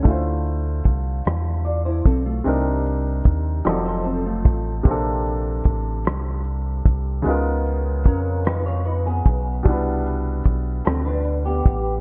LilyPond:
<<
  \new Staff \with { instrumentName = "Clean electric guitar" } { \time 6/8 \key c \lydian \tempo 4. = 50 <cis' a'>16 r4. r16 <f' d''>16 <e' c''>16 <c' a'>16 <a f'>16~ | <a f'>16 r4 r16 <ges' d''>16 <ees' c''>16 <c' a'>16 <a f'>8. | r2. | r4 <cis' ais'>8 <dis' b'>16 <eis' cis''>16 <dis' b'>16 <b gis'>8. |
r4. <c' a'>16 <d' b'>8 <b g'>8. | }
  \new Staff \with { instrumentName = "Grand piano" } { \time 6/8 \key c \lydian <d a e' f' c''>2. | <c c' d' ees' bes'>4. <f ges c' ees' a'>4. | <c bes c' d' a'>2. | <cis gis b dis' eis' ais'>2. |
<b, g d' e' b' fis''>2. | }
  \new Staff \with { instrumentName = "Analog synth bass" } { \clef bass \time 6/8 \key c \lydian d,4 c,8 e,4 b,,8 | c,4 ees,8 f,,4 a,,8 | bes,,4 a,,8 c,4 c,8 | cis,4 eis,4. b,,8 |
c,4 b,,8 d,4 a,,8 | }
  \new DrumStaff \with { instrumentName = "Drums" } \drummode { \time 6/8 <hh bd>8 hh8 <hh bd>8 <hh ss>8 hh8 <hh bd>8 | hh8 hh8 <hh bd>8 <hh ss>8 hh8 <hh bd>8 | <hh bd>8 hh8 <hh bd>8 <hh ss>8 hh8 <hh bd>8 | hh8 hh8 <hh bd>8 <hh ss>8 hh8 <hh bd>8 |
<hh bd>8 hh8 <hh bd>8 <hh ss>8 hh8 <hh bd>8 | }
>>